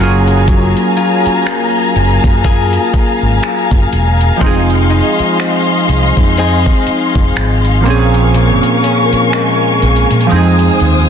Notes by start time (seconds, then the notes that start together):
Already playing: G#2 F#3 A#3 C#4 D#4 G#4 G#5
0.00 F#1 F#3 C#4 F4 G#4 F5 A#5
0.28 closed hi-hat
0.48 F#3, kick, closed hi-hat
0.77 closed hi-hat
0.97 F4, closed hi-hat
1.26 muted fretless electric bass stroke, closed hi-hat
1.46 A#3, finger snap, closed hi-hat
1.96 F#1, closed hi-hat
2.24 F#2, kick, closed hi-hat
2.44 A#3 F4 G#4, kick, closed hi-hat
2.73 closed hi-hat
2.94 muted fretless electric bass stroke, kick, closed hi-hat
3.23 G#1
3.43 finger snap, closed hi-hat
3.71 F#1, kick, closed hi-hat
3.93 E1, closed hi-hat
4.21 closed hi-hat
4.37 F3 G#3
4.41 F1 F3 C4 D#4 D#5 C6, kick, closed hi-hat
4.46 G#4
4.70 closed hi-hat
4.90 D#4, closed hi-hat
5.19 muted fretless electric bass stroke, closed hi-hat
5.40 C4, finger snap, closed hi-hat
5.89 C2, closed hi-hat
6.17 F2, kick, closed hi-hat
6.37 C4 D#4 G#4, closed hi-hat
6.66 kick, closed hi-hat
6.87 muted fretless electric bass stroke, closed hi-hat
7.15 F1, kick
7.36 G#1, finger snap, closed hi-hat
7.65 closed hi-hat
7.81 F3 A#3
7.85 A#1 A#2 C4 C#4 A#4 G#5 C#6, closed hi-hat
7.90 G#4
8.14 closed hi-hat
8.34 A#2, closed hi-hat
8.63 closed hi-hat
8.84 C#4, closed hi-hat
9.13 muted fretless electric bass stroke, closed hi-hat
9.33 G#3, finger snap, closed hi-hat
9.82 A#1, closed hi-hat
9.96 closed hi-hat
10.11 A#2, closed hi-hat
10.21 closed hi-hat
10.27 F3 G#3, closed hi-hat
10.31 F2 C4 D#4 C5 D#6
10.36 G#4
10.59 closed hi-hat
10.80 D#2, closed hi-hat